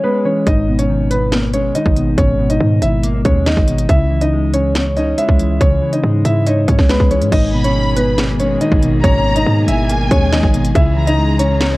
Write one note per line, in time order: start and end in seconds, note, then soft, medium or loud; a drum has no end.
0.00 0.46 G#3 loud
0.00 0.46 C#4 medium
0.00 0.24 B4 medium
0.00 0.47 C#5 medium
0.04 0.24 B3 medium
0.24 0.46 E3 medium
0.24 0.46 C#4 medium
0.24 0.45 C#5 medium
0.46 1.71 G#1 loud
0.46 1.54 G#2 medium
0.46 0.77 D#4 medium
0.46 0.77 D#5 medium
0.46 kick loud
0.46 closed hi-hat medium
0.67 1.75 B2 medium
0.79 1.09 C#4 medium
0.79 1.09 C#5 medium
0.79 closed hi-hat medium
0.89 1.74 D#3 medium
1.10 1.31 B3 medium
1.10 1.31 B4 medium
1.10 closed hi-hat medium
1.32 1.54 A#3 loud
1.32 snare loud
1.32 closed hi-hat medium
1.54 2.61 G#3 medium
1.54 1.74 C#4 medium
1.54 1.74 C#5 medium
1.54 closed hi-hat medium
1.75 2.60 D#3 medium
1.75 2.16 D#4 medium
1.75 2.15 D#5 medium
1.75 closed hi-hat medium
1.86 2.17 G#1 loud
1.86 kick medium
1.96 2.38 B2 medium
1.96 closed hi-hat medium
2.17 2.59 G#1 loud
2.17 3.25 G#2 medium
2.17 2.48 C#4 medium
2.17 2.48 C#5 medium
2.17 kick loud
2.17 closed hi-hat medium
2.39 3.46 B2 medium
2.50 2.81 D#4 medium
2.50 2.80 D#5 medium
2.50 closed hi-hat medium
2.61 2.81 G#2 loud
2.61 3.45 D#3 medium
2.82 3.23 G#1 loud
2.82 3.03 E4 medium
2.82 3.02 E5 medium
2.82 closed hi-hat medium
3.04 3.25 A#3 loud
3.04 closed hi-hat medium
3.25 3.56 D#2 loud
3.25 3.89 G#3 medium
3.25 3.46 C#4 medium
3.25 3.45 C#5 medium
3.25 kick medium
3.25 closed hi-hat medium
3.46 3.89 D#3 medium
3.46 3.87 D#4 medium
3.46 3.87 D#5 medium
3.46 snare loud
3.46 closed hi-hat medium
3.57 3.88 G#1 loud
3.57 kick medium
3.68 3.88 B2 medium
3.68 closed hi-hat medium
3.79 closed hi-hat medium
3.89 5.14 C#2 loud
3.89 4.96 C#3 loud
3.89 4.20 E4 medium
3.89 4.19 E5 medium
3.89 kick loud
3.89 closed hi-hat medium
4.10 5.18 E3 medium
4.21 4.52 D#4 medium
4.21 4.52 D#5 medium
4.21 closed hi-hat medium
4.33 5.16 G#3 medium
4.54 4.74 C#4 medium
4.54 4.74 C#5 medium
4.54 closed hi-hat medium
4.75 5.82 C#5 loud
4.75 snare loud
4.75 closed hi-hat medium
4.96 6.04 C#4 medium
4.96 5.17 D#4 medium
4.96 5.17 D#5 medium
4.96 closed hi-hat medium
5.17 6.02 G#3 medium
5.17 5.59 E4 medium
5.17 5.58 E5 medium
5.17 closed hi-hat medium
5.29 5.59 C#2 loud
5.29 kick medium
5.39 5.81 E3 medium
5.39 closed hi-hat medium
5.61 5.81 C#2 loud
5.61 6.68 C#3 medium
5.61 5.91 C#4 medium
5.61 5.91 C#5 loud
5.61 kick loud
5.61 closed hi-hat medium
5.82 6.89 E3 medium
5.93 6.23 D#4 medium
5.93 6.23 D#5 medium
5.93 closed hi-hat medium
6.03 6.24 G#2 loud
6.03 6.88 G#3 medium
6.25 6.66 G#2 loud
6.25 6.46 E4 medium
6.25 6.45 E5 medium
6.25 closed hi-hat medium
6.46 6.67 D#4 medium
6.46 7.32 C#5 medium
6.46 6.67 D#5 medium
6.46 closed hi-hat medium
6.67 6.78 G#2 loud
6.67 7.32 C#4 medium
6.67 6.89 C#4 medium
6.67 6.88 C#5 medium
6.67 kick medium
6.67 closed hi-hat medium
6.79 6.99 C#2 loud
6.79 kick loud
6.79 snare medium
6.89 7.32 G#3 loud
6.89 7.10 B3 medium
6.89 7.10 B4 medium
6.89 snare loud
6.89 closed hi-hat medium
7.00 7.23 C#2 loud
7.00 kick medium
7.10 7.32 E3 medium
7.10 7.32 C#4 medium
7.10 7.31 C#5 medium
7.10 closed hi-hat medium
7.21 7.32 G#2 loud
7.21 closed hi-hat medium
7.32 8.57 G#1 loud
7.32 8.40 G#2 medium
7.32 10.72 B2 medium
7.32 10.72 D#3 medium
7.32 10.72 A#3 medium
7.32 7.63 D#4 medium
7.32 11.77 G#4 medium
7.32 7.62 D#5 loud
7.32 kick loud
7.32 closed hi-hat medium
7.32 crash loud
7.53 8.61 B2 medium
7.53 8.14 B5 medium
7.64 7.95 C#4 medium
7.64 7.95 C#5 medium
7.64 closed hi-hat medium
7.75 8.60 D#3 loud
7.96 8.17 B3 medium
7.96 8.17 B4 loud
7.96 closed hi-hat medium
8.18 8.39 A#3 loud
8.18 snare loud
8.18 closed hi-hat medium
8.39 9.47 G#3 medium
8.39 8.60 C#4 medium
8.39 8.60 C#5 medium
8.39 closed hi-hat medium
8.61 9.45 D#3 medium
8.61 9.01 D#4 medium
8.61 9.01 D#5 medium
8.61 closed hi-hat medium
8.71 9.02 G#1 loud
8.71 kick loud
8.82 9.24 B2 medium
8.82 closed hi-hat medium
9.03 9.45 G#1 loud
9.03 10.11 G#2 medium
9.03 9.34 C#4 medium
9.03 9.34 C#5 loud
9.03 9.64 A#5 loud
9.03 kick loud
9.03 closed hi-hat medium
9.25 10.32 B2 medium
9.36 9.67 D#4 medium
9.36 9.66 D#5 medium
9.36 closed hi-hat medium
9.46 9.67 G#2 loud
9.46 10.31 D#3 medium
9.68 10.09 G#1 loud
9.68 9.89 E4 medium
9.68 9.88 E5 medium
9.68 10.71 G#5 loud
9.68 closed hi-hat medium
9.89 10.11 A#3 loud
9.89 closed hi-hat medium
10.11 10.42 D#2 loud
10.11 10.75 G#3 medium
10.11 10.31 C#4 medium
10.11 10.31 C#5 medium
10.11 kick medium
10.11 closed hi-hat medium
10.32 10.75 D#3 medium
10.32 10.73 D#4 medium
10.32 10.73 D#5 medium
10.32 snare loud
10.32 closed hi-hat medium
10.43 10.74 G#1 loud
10.43 kick loud
10.53 10.74 B2 medium
10.53 closed hi-hat medium
10.64 closed hi-hat medium
10.74 11.77 C#2 loud
10.74 11.77 C#3 loud
10.74 11.77 E3 medium
10.74 11.77 G#3 medium
10.74 11.77 C#4 medium
10.74 11.06 E4 medium
10.74 11.05 E5 medium
10.74 kick loud
10.74 closed hi-hat medium
10.96 11.77 E3 medium
10.96 11.57 A#5 medium
11.07 11.38 D#4 medium
11.07 11.37 D#5 medium
11.07 closed hi-hat medium
11.18 11.77 G#3 medium
11.39 11.60 C#4 medium
11.39 11.60 C#5 medium
11.39 closed hi-hat medium
11.61 11.77 C#5 loud
11.61 snare loud
11.61 closed hi-hat medium